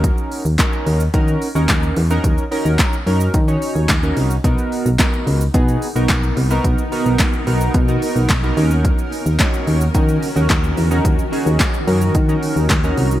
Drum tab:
HH |x-o-x-o-x-o-x-o-|x-o-x-o-x-o-x-o-|x-o-x-o-x-o-x-o-|x-o-x-o-x-o-x-o-|
SH |xxxxxxxxxxxxxxxx|xxxxxxxxxxxxxxxx|xxxxxxxxxxxxxxxx|xxxxxxxxxxxxxxxx|
CP |----x-------x---|----x-------x---|----x-------x---|----x-------x---|
SD |----o-------o---|----o-------o---|----o-------o---|----o-------o---|
BD |o---o---o---o---|o---o---o---o---|o---o---o---o---|o---o---o---o---|

HH |x-o-x-o-x-o-x-o-|x-o-x-o-x-o-x-o-|
SH |xxxxxxxxxxxxxxxx|xxxxxxxxxxxxxxxx|
CP |----x-------x---|----x-------x---|
SD |----o-------o---|----o-------o---|
BD |o---o---o---o---|o---o---o---o---|